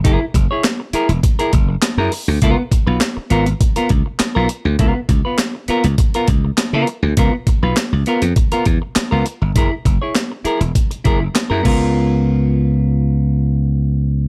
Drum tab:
CC |----------------|----------------|----------------|----------------|
HH |x-x-x-xxxxx-x-o-|x-x-x-xxxxx-x-x-|x-x-x-xxxxx-x-x-|x-x-x-xxxxx-x-x-|
CP |----x-------x---|----x-------x---|----x-------x---|----x-------x---|
SD |----o-------o---|----o-------o---|----o-------o---|----o-------o---|
BD |o-o-----o-o-----|o-o-----o-o-----|o-o-----o-o-----|o-o-----o-o-----|

CC |--------------x-|----------------|
HH |x-x-x-xxxxx-x---|----------------|
CP |----x-------x---|----------------|
SD |----o-------o---|----------------|
BD |o-o-----o-o---o-|----------------|